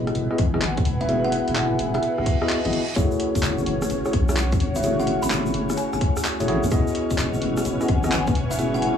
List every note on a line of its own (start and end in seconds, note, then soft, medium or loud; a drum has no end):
0.00 0.11 E1 loud
0.00 0.27 B3 medium
0.00 0.27 E4 medium
0.00 4.12 E4 medium
0.00 0.27 F#4 medium
0.00 0.40 F#4 medium
0.00 0.27 G#4 medium
0.00 4.35 B4 medium
0.00 0.30 C#5 loud
0.00 0.27 D#5 loud
0.00 3.87 F#5 medium
0.00 2.96 G#5 medium
0.07 cross-stick medium
0.07 closed hi-hat soft
0.15 0.27 E1 medium
0.15 closed hi-hat medium
0.31 0.38 B3 medium
0.31 0.38 E4 medium
0.31 0.38 F#4 medium
0.31 0.38 G#4 medium
0.31 0.38 D#5 medium
0.31 cross-stick medium
0.38 0.79 G#1 loud
0.38 kick loud
0.38 open hi-hat loud
0.54 0.62 B3 medium
0.54 0.62 E4 medium
0.54 0.62 F#4 medium
0.54 0.62 G#4 medium
0.54 0.62 D#5 loud
0.54 cross-stick medium
0.62 clap loud
0.62 closed hi-hat medium
0.77 0.83 E2 loud
0.77 kick loud
0.77 closed hi-hat medium
0.85 1.41 E1 loud
0.85 open hi-hat loud
1.01 1.21 E5 loud
1.01 closed hi-hat soft
1.09 2.38 B3 medium
1.09 2.38 E4 medium
1.09 2.38 F#4 medium
1.09 2.38 G#4 medium
1.09 2.38 E5 medium
1.09 closed hi-hat medium
1.25 1.29 F#5 medium
1.32 1.42 F#5 medium
1.32 open hi-hat loud
1.48 1.76 E1 medium
1.48 closed hi-hat medium
1.56 clap loud
1.56 closed hi-hat medium
1.79 1.99 E1 loud
1.79 open hi-hat loud
1.94 2.59 E5 medium
1.94 cross-stick medium
1.94 closed hi-hat soft
2.03 closed hi-hat medium
2.03 reverse cymbal medium
2.18 2.24 E1 medium
2.18 cross-stick medium
2.26 kick loud
2.26 open hi-hat loud
2.42 2.58 B3 medium
2.42 2.58 E4 medium
2.42 2.58 F#4 medium
2.42 2.58 G#4 medium
2.42 2.58 D#5 loud
2.42 cross-stick medium
2.49 clap loud
2.49 closed hi-hat medium
2.65 2.71 G#1 loud
2.65 2.82 B3 medium
2.65 2.82 E4 medium
2.65 2.82 F#4 medium
2.65 2.82 G#4 medium
2.65 2.82 D#5 medium
2.65 closed hi-hat medium
2.73 open hi-hat loud
2.89 closed hi-hat soft
2.96 3.08 F#1 loud
2.96 4.02 A3 medium
2.96 8.98 C#4 medium
2.96 4.02 E4 medium
2.96 8.24 F#4 medium
2.96 4.02 F#4 medium
2.96 4.02 G#4 medium
2.96 8.98 C#5 medium
2.96 4.02 C#5 loud
2.96 kick loud
2.96 closed hi-hat medium
2.96 shaker medium
3.11 8.04 C#5 medium
3.11 shaker soft
3.20 open hi-hat loud
3.35 3.63 F#1 loud
3.35 kick medium
3.35 closed hi-hat medium
3.35 shaker medium
3.43 clap loud
3.43 closed hi-hat medium
3.43 shaker medium
3.58 shaker soft
3.67 3.86 F#1 loud
3.67 open hi-hat loud
3.82 cross-stick medium
3.82 closed hi-hat soft
3.82 shaker medium
3.90 4.02 F#1 medium
3.90 closed hi-hat medium
3.90 shaker medium
4.05 4.13 A3 medium
4.05 4.13 E4 medium
4.05 4.13 F#4 medium
4.05 4.13 G#4 medium
4.05 4.13 C#5 medium
4.05 cross-stick medium
4.05 shaker soft
4.13 4.54 B1 loud
4.13 kick loud
4.13 open hi-hat loud
4.29 4.37 A3 medium
4.29 4.37 E4 medium
4.29 4.37 F#4 medium
4.29 4.37 G#4 medium
4.29 4.37 C#5 loud
4.29 cross-stick medium
4.29 shaker medium
4.37 clap loud
4.37 closed hi-hat medium
4.37 shaker medium
4.52 4.58 F#2 loud
4.52 kick loud
4.52 closed hi-hat medium
4.52 shaker soft
4.60 5.16 F#1 loud
4.60 open hi-hat loud
4.75 4.96 E5 medium
4.75 closed hi-hat soft
4.75 shaker medium
4.83 6.37 A3 medium
4.83 6.37 E4 medium
4.83 6.37 F#4 medium
4.83 6.37 G#4 medium
4.83 6.37 C#5 medium
4.83 closed hi-hat medium
4.83 shaker medium
5.00 5.05 F#5 medium
5.00 shaker soft
5.07 5.17 F#5 medium
5.07 open hi-hat loud
5.23 5.51 F#1 medium
5.23 5.31 B5 medium
5.23 closed hi-hat medium
5.23 shaker medium
5.31 clap loud
5.31 closed hi-hat medium
5.31 shaker medium
5.46 shaker soft
5.54 5.73 F#1 loud
5.54 open hi-hat medium
5.70 cross-stick medium
5.70 closed hi-hat soft
5.70 shaker medium
5.77 5.87 G#5 medium
5.77 closed hi-hat medium
5.77 shaker medium
5.93 5.99 F#1 medium
5.93 5.98 G#5 medium
5.93 cross-stick medium
5.93 shaker soft
6.01 kick loud
6.01 open hi-hat loud
6.17 cross-stick medium
6.17 shaker medium
6.25 clap loud
6.25 closed hi-hat medium
6.40 6.49 E1 medium
6.40 6.46 A3 medium
6.40 6.46 E4 medium
6.40 6.46 F#4 medium
6.40 6.46 G#4 medium
6.40 6.46 C#5 loud
6.40 closed hi-hat medium
6.40 shaker soft
6.48 6.59 A1 medium
6.48 6.63 A3 loud
6.48 6.63 E4 medium
6.48 6.63 F#4 medium
6.48 6.63 G#4 medium
6.48 6.63 C#5 loud
6.48 open hi-hat loud
6.63 6.69 C#2 loud
6.63 closed hi-hat soft
6.63 shaker medium
6.71 6.83 E1 loud
6.71 7.77 B3 medium
6.71 8.98 E4 loud
6.71 7.77 E4 medium
6.71 7.77 F#4 medium
6.71 7.77 G#4 medium
6.71 7.77 D#5 loud
6.71 kick loud
6.71 closed hi-hat medium
6.71 shaker medium
6.87 shaker soft
6.92 8.98 F#5 medium
6.92 open hi-hat loud
7.04 8.98 B4 medium
7.10 7.38 E1 medium
7.10 kick medium
7.10 closed hi-hat medium
7.10 shaker medium
7.18 clap loud
7.18 closed hi-hat medium
7.18 shaker medium
7.33 shaker soft
7.41 7.61 E1 loud
7.41 8.98 G#5 medium
7.41 open hi-hat medium
7.57 cross-stick medium
7.57 closed hi-hat soft
7.57 shaker medium
7.65 7.77 E1 medium
7.65 closed hi-hat medium
7.65 shaker medium
7.80 7.88 B3 medium
7.80 7.88 E4 medium
7.80 7.88 F#4 medium
7.80 7.88 G#4 medium
7.80 7.88 D#5 medium
7.80 cross-stick medium
7.80 shaker soft
7.88 8.29 G#1 loud
7.88 kick loud
7.88 open hi-hat loud
8.03 8.12 B3 medium
8.03 8.12 E4 medium
8.03 8.12 F#4 medium
8.03 8.12 G#4 medium
8.03 8.12 D#5 loud
8.03 cross-stick medium
8.03 shaker medium
8.12 clap loud
8.12 closed hi-hat medium
8.12 shaker medium
8.27 8.33 E2 medium
8.27 kick loud
8.27 closed hi-hat medium
8.27 shaker soft
8.35 8.91 E1 loud
8.35 open hi-hat medium
8.51 8.71 E5 medium
8.51 closed hi-hat soft
8.51 shaker medium
8.59 8.98 B3 medium
8.59 8.98 E4 medium
8.59 8.98 F#4 medium
8.59 8.98 G#4 medium
8.59 8.98 E5 medium
8.59 closed hi-hat medium
8.74 8.79 F#5 medium
8.74 shaker soft
8.82 8.92 F#5 medium
8.82 open hi-hat loud